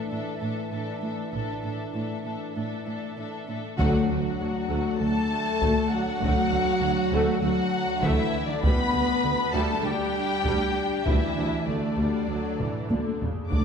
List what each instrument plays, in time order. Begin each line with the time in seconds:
Already playing: french horn section E3 D4
0.10 cello section A2, viola section D4, violin section A4 E5
0.39 cello section A2, viola section D4, violin section A4 E5
0.72 cello section A2, viola section D4, violin section A4 E5
1.02 cello section A2, viola section D4, violin section A4 E5
1.32 double bass section A1, cello section A2, viola section D4, violin section A4 E5
1.62 cello section A2, viola section D4, violin section A4 E5
1.94 cello section A2, viola section D4, violin section A4 E5
2.25 cello section A2, viola section D4, violin section A4 E5
2.56 cello section A2, viola section D4, violin section A4 E5
2.86 cello section A2, viola section D4, violin section A4 E5
3.17 cello section A2, viola section D4, violin section A4 E5
3.48 cello section A2, viola section D4, violin section A4 E5
3.78 double bass section D2, tuba D2, cello section D2, timpani D3, french horn section F#3, trombone section F#3, viola section A3 D4, violin section F#4 F#5, taiko
4.09 double bass section D2, cello section D2, tuba D2, viola section A3
4.39 double bass section D2, tuba D2, cello section D2, viola section F#3
4.69 double bass section D2, cello section D2, tuba D2, viola section A3
4.98 double bass section D2, cello section D2, tuba D2, trombone section A3, viola section A3, french horn section A3, violin section A4 A5
5.60 double bass section D2, tuba D2, cello section D2, viola section A3, taiko
5.90 trombone section F#3, french horn section F#3, violin section F#4 F#5
6.21 cello section D2, double bass section D2, tuba D2, viola section A3, taiko
6.51 double bass section D2, cello section D2, tuba D2, viola section A3
6.80 double bass section D2, cello section D2, tuba D2, viola section F#3
7.11 cello section D2, double bass section D2, tuba D2, viola section A3
7.42 cello section D2, tuba D2, double bass section D2, french horn section F#3, trombone section F#3, viola section A3, violin section F#4 F#5
8.02 cello section D2, double bass section D2, tuba D2, french horn section E3, trombone section E3, viola section A3, violin section E4 E5, taiko
8.48 french horn section D3, trombone section D3, violin section D4 D5
8.63 tuba D2, cello section D2, double bass section D2, viola section G3 D4, french horn section B3, trombone section B3, violin section B4 B5, taiko
8.93 cello section D2, tuba D2, double bass section D2, viola section G3
9.23 tuba D2, cello section D2, double bass section D2, viola section D3
9.53 double bass section D2, cello section D2, tuba D2, viola section G3, french horn section A3, trombone section A3, violin section A4 A5
9.82 double bass section D2, tuba D2, cello section D2, french horn section G3, viola section G3, trombone section G3, violin section G4 G5
10.44 tuba D2, cello section D2, double bass section D2, viola section G3, taiko
11.04 double bass section D2, cello section D2, tuba D2, french horn section E3, trombone section E3, viola section G3, violin section E4 E5, taiko
11.36 tuba D2, cello section D2, double bass section D2, viola section G3
11.67 double bass section D2, tuba D2, cello section D2, french horn section D3, trombone section D3, viola section A3, violin section D4 D5
11.97 double bass section D2, cello section D2, tuba D2, viola section G3
12.28 double bass section D2, cello section D2, tuba D2, viola section F#3
12.60 viola section E3, taiko low-mid
12.89 tuba D2, double bass section D2, cello section D2, viola section D3, taiko high
13.20 viola section C#3, taiko low
13.50 double bass section D2, tuba D2, cello section D2, viola section F#3 D4, french horn section D4, trombone section D4, violin section D5 D6, taiko